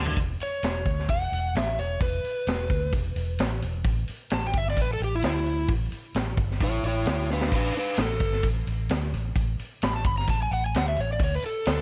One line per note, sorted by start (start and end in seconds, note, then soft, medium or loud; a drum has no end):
0.00 0.15 D2 loud
0.00 0.18 D3 loud
0.06 floor tom medium
0.17 0.39 E1 medium
0.17 kick loud
0.17 open hi-hat medium
0.40 1.09 C#5 medium
0.40 muted fingered electric bass stroke soft
0.40 open hi-hat medium
0.63 0.85 E1 medium
0.63 snare loud
0.63 open hi-hat medium
0.85 1.07 D2 medium
0.85 kick loud
0.85 open hi-hat medium
0.99 snare soft
1.09 1.31 E1 medium
1.09 1.54 F#5 loud
1.09 kick medium
1.09 open hi-hat medium
1.32 1.54 E1 medium
1.32 open hi-hat medium
1.55 1.77 A1 medium
1.55 1.79 E5 medium
1.55 snare loud
1.55 open hi-hat medium
1.78 2.00 E1 medium
1.78 2.01 C#5 medium
1.78 open hi-hat medium
2.01 2.22 E1 medium
2.01 2.91 B4 loud
2.01 kick loud
2.01 open hi-hat medium
2.24 muted fingered electric bass stroke soft
2.24 open hi-hat medium
2.47 2.69 E1 medium
2.47 snare loud
2.47 open hi-hat medium
2.70 2.92 D2 medium
2.70 kick loud
2.70 open hi-hat medium
2.93 3.15 E1 medium
2.93 kick medium
2.93 open hi-hat medium
3.16 3.37 E1 medium
3.16 open hi-hat medium
3.39 3.61 A1 medium
3.39 snare loud
3.39 open hi-hat medium
3.62 3.84 E1 medium
3.62 open hi-hat medium
3.84 4.06 A1 medium
3.84 kick loud
3.84 open hi-hat medium
4.08 muted fingered electric bass stroke soft
4.08 open hi-hat medium
4.30 4.53 A1 medium
4.30 4.44 A5 loud
4.30 snare loud
4.30 open hi-hat medium
4.44 4.56 G5 medium
4.44 snare soft
4.54 4.76 G1 medium
4.54 4.67 E5 medium
4.54 kick loud
4.54 open hi-hat medium
4.68 4.79 D5 medium
4.68 snare soft
4.77 4.98 A1 medium
4.77 kick medium
4.77 open hi-hat medium
4.82 4.91 B4 medium
4.93 5.02 A4 medium
5.00 5.22 A1 medium
5.00 open hi-hat medium
5.04 5.14 G4 medium
5.15 5.25 E4 medium
5.22 5.66 D2 medium
5.22 5.70 E4 loud
5.22 snare loud
5.22 open hi-hat medium
5.46 open hi-hat medium
5.68 5.90 A1 medium
5.68 kick loud
5.68 open hi-hat medium
5.92 muted fingered electric bass stroke soft
5.92 open hi-hat medium
6.14 6.37 A1 medium
6.14 snare loud
6.14 open hi-hat medium
6.37 6.59 G1 medium
6.37 kick loud
6.37 open hi-hat medium
6.51 snare soft
6.61 6.83 A1 medium
6.61 6.85 E4 medium
6.61 6.85 C#5 medium
6.61 kick medium
6.61 open hi-hat medium
6.83 7.05 A1 medium
6.83 7.07 E4 medium
6.83 open hi-hat medium
6.88 7.08 C#5 medium
7.05 7.49 D2 medium
7.05 snare loud
7.05 open hi-hat medium
7.10 7.30 E4 medium
7.10 7.31 C#5 medium
7.30 7.53 D4 medium
7.30 7.54 B4 medium
7.30 snare medium
7.41 snare medium
7.52 7.74 A1 medium
7.52 7.76 D4 medium
7.52 kick loud
7.52 open hi-hat medium
7.52 crash medium
7.56 7.77 B4 medium
7.74 7.98 D4 medium
7.74 open hi-hat medium
7.79 8.00 B4 medium
7.96 8.20 A1 medium
7.96 snare loud
7.96 open hi-hat medium
8.01 8.45 A4 medium
8.20 8.43 G1 medium
8.20 kick loud
8.20 open hi-hat medium
8.33 snare soft
8.43 8.66 A1 medium
8.43 kick medium
8.43 open hi-hat medium
8.67 8.89 A1 medium
8.67 open hi-hat medium
8.89 9.12 D2 medium
8.89 snare loud
8.89 open hi-hat medium
9.13 9.35 A1 medium
9.13 open hi-hat medium
9.36 9.58 A1 medium
9.36 kick loud
9.36 open hi-hat medium
9.59 muted fingered electric bass stroke soft
9.59 open hi-hat medium
9.82 10.04 A1 medium
9.82 9.95 B5 medium
9.82 snare loud
9.82 open hi-hat medium
9.96 10.06 A5 medium
10.05 10.27 G1 medium
10.05 10.17 B5 medium
10.05 kick loud
10.05 open hi-hat medium
10.18 10.29 A#5 medium
10.18 snare soft
10.28 10.50 A1 medium
10.28 10.41 A5 medium
10.28 kick medium
10.28 open hi-hat medium
10.43 10.53 G#5 medium
10.51 10.73 A1 medium
10.51 10.64 F#5 medium
10.51 open hi-hat medium
10.66 10.76 G#5 medium
10.74 10.96 D2 medium
10.74 10.87 F#5 medium
10.74 snare loud
10.74 open hi-hat medium
10.88 10.98 E5 medium
10.96 11.19 A1 medium
10.96 open hi-hat medium
11.00 11.10 C#5 medium
11.13 11.22 D5 medium
11.20 11.42 D2 medium
11.20 kick loud
11.20 open hi-hat medium
11.24 11.34 C#5 medium
11.35 11.45 B4 medium
11.42 11.81 A4 loud
11.42 muted fingered electric bass stroke soft
11.42 open hi-hat medium
11.65 11.81 D2 medium
11.65 snare loud
11.65 open hi-hat medium